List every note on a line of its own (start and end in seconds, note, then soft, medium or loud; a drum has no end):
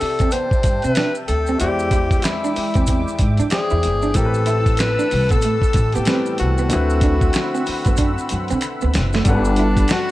0.00 1.55 C3 medium
0.00 1.56 C4 soft
0.00 1.56 E4 soft
0.00 1.57 G4 medium
0.00 0.34 A4 medium
0.00 1.57 A4 soft
0.00 1.58 D5 medium
0.00 4.11 E5 medium
0.00 4.11 G5 medium
0.00 1.57 A5 medium
0.00 muted upright bass stroke soft
0.00 muted clean electric guitar stroke soft
0.00 open hi-hat soft
0.00 maracas soft
0.19 0.49 E2 medium
0.19 0.28 C4 medium
0.19 kick medium
0.19 closed hi-hat soft
0.19 maracas soft
0.31 0.45 B3 medium
0.31 0.85 C5 loud
0.31 closed hi-hat medium
0.31 maracas medium
0.51 kick medium
0.51 maracas soft
0.63 0.82 G2 medium
0.63 muted clean electric guitar stroke soft
0.63 kick medium
0.63 closed hi-hat medium
0.63 maracas soft
0.82 0.95 C3 medium
0.82 0.92 C4 medium
0.82 1.14 B4 medium
0.82 closed hi-hat soft
0.82 maracas soft
0.95 1.09 D4 medium
0.95 finger snap medium
0.95 snare loud
0.95 closed hi-hat medium
0.95 maracas medium
1.15 maracas soft
1.27 1.56 D2 medium
1.27 1.57 A4 medium
1.27 muted clean electric guitar stroke soft
1.27 closed hi-hat medium
1.27 maracas soft
1.47 1.56 C4 medium
1.47 maracas soft
1.58 2.17 E2 loud
1.58 3.47 E3 medium
1.58 4.12 G#3 medium
1.58 3.48 G#3 medium
1.58 3.47 E4 medium
1.58 2.25 G4 medium
1.58 3.48 G4 soft
1.58 4.12 D6 medium
1.58 closed hi-hat medium
1.58 maracas medium
1.63 3.49 C5 medium
1.63 3.49 D5 medium
1.79 maracas soft
1.91 2.04 E4 medium
1.91 kick loud
1.91 closed hi-hat medium
1.91 maracas soft
2.11 kick medium
2.11 closed hi-hat soft
2.11 maracas soft
2.22 3.25 E4 medium
2.22 finger snap medium
2.22 snare loud
2.22 closed hi-hat medium
2.22 maracas medium
2.44 2.51 D4 medium
2.44 maracas soft
2.56 muted clean electric guitar stroke soft
2.56 muted upright bass stroke soft
2.56 open hi-hat soft
2.56 maracas soft
2.74 3.04 E2 medium
2.74 2.83 C4 medium
2.74 kick medium
2.74 closed hi-hat soft
2.74 maracas soft
2.87 3.00 C4 medium
2.87 kick medium
2.87 closed hi-hat medium
2.87 maracas medium
3.08 maracas soft
3.19 3.37 G#2 medium
3.19 muted clean electric guitar stroke soft
3.19 kick medium
3.19 closed hi-hat medium
3.19 maracas soft
3.37 3.50 E3 medium
3.37 3.47 D4 medium
3.37 closed hi-hat soft
3.37 maracas medium
3.50 4.13 E3 soft
3.50 4.15 E4 soft
3.50 4.17 G#4 loud
3.50 4.15 G#4 soft
3.50 4.16 C5 soft
3.50 4.16 D5 soft
3.50 4.15 G5 soft
3.50 finger snap medium
3.50 snare loud
3.50 closed hi-hat medium
3.50 maracas medium
3.70 3.87 E2 medium
3.70 3.79 E4 medium
3.70 maracas soft
3.83 4.12 G1 medium
3.83 muted clean electric guitar stroke soft
3.83 closed hi-hat medium
3.83 maracas soft
4.02 4.10 D4 medium
4.02 maracas soft
4.13 4.95 A1 loud
4.13 6.02 A2 medium
4.13 6.02 E3 medium
4.13 6.03 C4 medium
4.13 6.04 G4 medium
4.13 6.67 A4 medium
4.13 4.80 A4 medium
4.13 6.67 A5 medium
4.13 6.67 E6 loud
4.13 kick loud
4.13 closed hi-hat medium
4.13 maracas medium
4.18 4.24 A#4 medium
4.25 6.07 B4 medium
4.34 maracas soft
4.46 4.59 E4 medium
4.46 closed hi-hat medium
4.46 maracas soft
4.66 kick medium
4.66 closed hi-hat soft
4.66 maracas soft
4.77 5.32 B4 loud
4.77 finger snap medium
4.77 snare loud
4.77 closed hi-hat medium
4.77 maracas medium
4.99 5.06 D4 medium
4.99 maracas soft
5.11 5.29 C2 medium
5.11 muted clean electric guitar stroke soft
5.11 open hi-hat soft
5.11 maracas soft
5.29 5.59 A2 medium
5.29 5.38 B3 medium
5.29 5.96 A4 medium
5.29 kick loud
5.29 closed hi-hat soft
5.29 maracas soft
5.42 5.56 A3 medium
5.42 closed hi-hat medium
5.42 maracas medium
5.62 kick medium
5.62 maracas soft
5.73 5.92 A1 loud
5.73 muted clean electric guitar stroke soft
5.73 kick medium
5.73 closed hi-hat medium
5.73 maracas soft
5.92 6.03 B3 medium
5.92 6.39 G4 medium
5.92 closed hi-hat soft
5.92 maracas soft
5.96 6.06 A2 medium
6.05 6.70 A2 soft
6.05 6.70 E3 soft
6.05 6.71 G3 soft
6.05 6.15 B3 soft
6.05 6.19 C4 medium
6.05 6.71 B4 soft
6.05 finger snap medium
6.05 snare loud
6.05 closed hi-hat medium
6.05 maracas medium
6.14 6.69 C4 soft
6.26 maracas soft
6.38 6.68 C2 medium
6.38 8.58 F#4 medium
6.38 muted clean electric guitar stroke soft
6.38 closed hi-hat medium
6.38 maracas soft
6.58 6.66 B3 medium
6.58 maracas soft
6.69 7.28 D2 loud
6.69 9.21 D3 medium
6.69 9.21 A3 medium
6.69 9.23 C4 medium
6.69 9.22 C4 medium
6.69 9.22 E4 medium
6.69 9.23 F#5 medium
6.69 9.23 B5 medium
6.69 9.23 E6 medium
6.69 closed hi-hat medium
6.69 maracas medium
6.73 9.23 F#4 medium
6.73 9.23 B4 medium
6.90 maracas soft
7.01 7.15 D4 medium
7.01 kick loud
7.01 closed hi-hat medium
7.01 maracas soft
7.21 kick medium
7.21 maracas soft
7.33 finger snap medium
7.33 snare loud
7.33 closed hi-hat medium
7.33 maracas medium
7.54 7.62 C4 medium
7.54 maracas soft
7.66 muted clean electric guitar stroke soft
7.66 muted upright bass stroke soft
7.66 open hi-hat medium
7.66 maracas soft
7.85 8.14 F#2 medium
7.85 7.94 B3 medium
7.85 kick loud
7.85 closed hi-hat soft
7.85 maracas soft
7.97 8.10 D4 medium
7.97 kick medium
7.97 closed hi-hat medium
7.97 maracas medium
8.18 maracas soft
8.29 8.48 F#2 medium
8.29 muted clean electric guitar stroke soft
8.29 closed hi-hat medium
8.29 maracas soft
8.48 8.62 D3 medium
8.48 8.58 C4 medium
8.48 closed hi-hat soft
8.48 maracas soft
8.61 finger snap medium
8.61 closed hi-hat medium
8.61 maracas medium
8.81 8.98 D2 medium
8.81 8.90 B3 medium
8.81 maracas soft
8.94 9.24 F#1 medium
8.94 muted clean electric guitar stroke soft
8.94 snare loud
8.94 closed hi-hat medium
8.94 maracas soft
9.13 9.21 A3 medium
9.13 snare medium
9.13 maracas soft
9.24 9.83 G1 loud
9.24 10.11 G3 medium
9.24 10.11 D4 medium
9.24 10.11 A4 medium
9.24 10.11 F#5 medium
9.24 10.11 A5 medium
9.24 10.11 B5 medium
9.24 kick loud
9.24 closed hi-hat medium
9.24 maracas medium
9.28 9.93 D4 medium
9.28 10.11 B4 medium
9.45 maracas medium
9.56 9.71 E4 medium
9.56 closed hi-hat medium
9.77 kick medium
9.77 closed hi-hat soft
9.77 maracas soft
9.88 10.11 F#4 loud
9.88 finger snap medium
9.88 snare loud
9.88 closed hi-hat medium
9.88 maracas medium